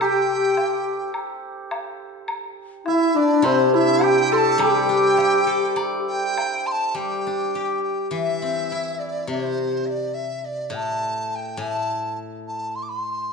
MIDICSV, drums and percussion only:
0, 0, Header, 1, 2, 480
1, 0, Start_track
1, 0, Tempo, 568182
1, 19, Time_signature, 4, 2, 24, 8
1, 2419, Tempo, 583658
1, 7699, Tempo, 573066
1, 11087, End_track
2, 0, Start_track
2, 0, Title_t, "Drums"
2, 8, Note_on_c, 9, 76, 68
2, 92, Note_off_c, 9, 76, 0
2, 484, Note_on_c, 9, 77, 55
2, 568, Note_off_c, 9, 77, 0
2, 963, Note_on_c, 9, 76, 57
2, 1048, Note_off_c, 9, 76, 0
2, 1447, Note_on_c, 9, 76, 52
2, 1447, Note_on_c, 9, 77, 50
2, 1531, Note_off_c, 9, 76, 0
2, 1531, Note_off_c, 9, 77, 0
2, 1926, Note_on_c, 9, 76, 58
2, 2011, Note_off_c, 9, 76, 0
2, 2414, Note_on_c, 9, 77, 49
2, 2496, Note_off_c, 9, 77, 0
2, 2891, Note_on_c, 9, 76, 50
2, 2973, Note_off_c, 9, 76, 0
2, 3362, Note_on_c, 9, 76, 51
2, 3362, Note_on_c, 9, 77, 56
2, 3444, Note_off_c, 9, 76, 0
2, 3444, Note_off_c, 9, 77, 0
2, 3843, Note_on_c, 9, 76, 64
2, 3925, Note_off_c, 9, 76, 0
2, 4323, Note_on_c, 9, 77, 49
2, 4406, Note_off_c, 9, 77, 0
2, 4807, Note_on_c, 9, 76, 57
2, 4889, Note_off_c, 9, 76, 0
2, 5307, Note_on_c, 9, 76, 52
2, 5307, Note_on_c, 9, 77, 50
2, 5389, Note_off_c, 9, 76, 0
2, 5389, Note_off_c, 9, 77, 0
2, 11087, End_track
0, 0, End_of_file